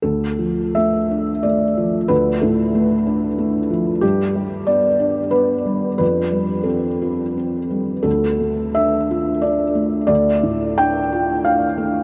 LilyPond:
<<
  \new Staff \with { instrumentName = "Felt piano" } { \time 3/4 \key d \dorian \tempo 4 = 90 a'4 e''4 d''4 | b'8 a'2 r8 | g'4 d''4 b'4 | b'4 a'4 r4 |
a'4 e''4 d''4 | d''4 g''4 f''4 | }
  \new Staff \with { instrumentName = "Felt piano" } { \time 3/4 \key d \dorian d,8 f8 a8 d'8 a8 f8 | d,8 a,8 a8 d'8 a8 f8 | g,8 g8 b8 d'8 b8 g8 | f,8 g8 c'8 f'8 c'8 g8 |
d,8 a8 d'8 f'8 d'8 a8 | d,8 a,8 d'8 f'8 d'8 a8 | }
>>